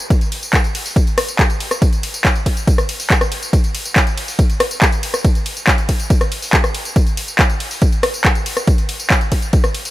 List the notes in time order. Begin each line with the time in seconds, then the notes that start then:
0.10 kick, closed hi-hat, ride, tambourine
0.21 closed hi-hat, tambourine
0.32 open hi-hat, ride
0.43 closed hi-hat, tambourine
0.53 kick, clap, closed hi-hat, ride, tambourine
0.64 closed hi-hat, tambourine
0.75 open hi-hat, ride
0.86 open hi-hat, tambourine
0.96 kick, closed hi-hat, ride, tambourine
1.07 closed hi-hat, tambourine
1.18 cross-stick, open hi-hat, ride
1.28 closed hi-hat, tambourine
1.39 kick, clap, closed hi-hat, ride, tambourine
1.50 closed hi-hat, tambourine
1.60 open hi-hat, ride
1.71 cross-stick, closed hi-hat, tambourine
1.82 kick, closed hi-hat, ride, tambourine
1.93 closed hi-hat, tambourine
2.03 open hi-hat, ride
2.14 closed hi-hat, tambourine
2.25 kick, clap, closed hi-hat, ride, tambourine
2.36 closed hi-hat, tambourine
2.46 kick, open hi-hat, ride
2.57 closed hi-hat, tambourine
2.67 kick, closed hi-hat, ride, tambourine
2.78 cross-stick, closed hi-hat, tambourine
2.89 open hi-hat, ride
3.00 open hi-hat, tambourine
3.10 kick, clap, closed hi-hat, ride, tambourine
3.21 cross-stick, closed hi-hat, tambourine
3.32 open hi-hat, ride
3.43 closed hi-hat, tambourine
3.53 kick, closed hi-hat, ride, tambourine
3.64 closed hi-hat, tambourine
3.75 open hi-hat, ride
3.85 closed hi-hat, tambourine
3.96 kick, clap, closed hi-hat, ride, tambourine
4.07 closed hi-hat, tambourine
4.17 open hi-hat, ride
4.28 open hi-hat, tambourine
4.39 kick, closed hi-hat, ride, tambourine
4.50 closed hi-hat, tambourine
4.60 cross-stick, open hi-hat, ride
4.71 closed hi-hat, tambourine
4.82 kick, clap, closed hi-hat, ride, tambourine
4.92 closed hi-hat, tambourine
5.03 open hi-hat, ride
5.14 cross-stick, tambourine
5.25 kick, closed hi-hat, ride, tambourine
5.35 closed hi-hat, tambourine
5.46 open hi-hat, ride
5.57 closed hi-hat, tambourine
5.67 kick, clap, closed hi-hat, ride, tambourine
5.78 closed hi-hat, tambourine
5.89 kick, open hi-hat, ride
6.00 closed hi-hat, tambourine
6.10 kick, closed hi-hat, ride, tambourine
6.21 cross-stick, closed hi-hat, tambourine
6.32 open hi-hat, ride
6.42 open hi-hat, tambourine
6.53 kick, clap, closed hi-hat, ride, tambourine
6.64 cross-stick, closed hi-hat, tambourine
6.75 open hi-hat, ride
6.85 closed hi-hat, tambourine
6.96 kick, closed hi-hat, ride, tambourine
7.07 closed hi-hat, tambourine
7.17 open hi-hat, ride
7.28 closed hi-hat, tambourine
7.39 kick, clap, closed hi-hat, ride, tambourine
7.50 closed hi-hat, tambourine
7.60 open hi-hat, ride
7.71 open hi-hat, tambourine
7.82 kick, closed hi-hat, ride, tambourine
7.92 closed hi-hat, tambourine
8.03 cross-stick, open hi-hat, ride
8.14 closed hi-hat, tambourine
8.25 kick, clap, closed hi-hat, ride, tambourine
8.35 closed hi-hat, tambourine
8.46 open hi-hat, ride
8.57 cross-stick, closed hi-hat, tambourine
8.67 kick, closed hi-hat, ride, tambourine
8.78 closed hi-hat, tambourine
8.89 open hi-hat, ride
9.00 closed hi-hat, tambourine
9.10 kick, clap, closed hi-hat, ride, tambourine
9.21 closed hi-hat, tambourine
9.32 kick, open hi-hat, ride
9.42 closed hi-hat, tambourine
9.53 kick, closed hi-hat, ride, tambourine
9.64 cross-stick, closed hi-hat, tambourine
9.74 open hi-hat, ride
9.85 open hi-hat, tambourine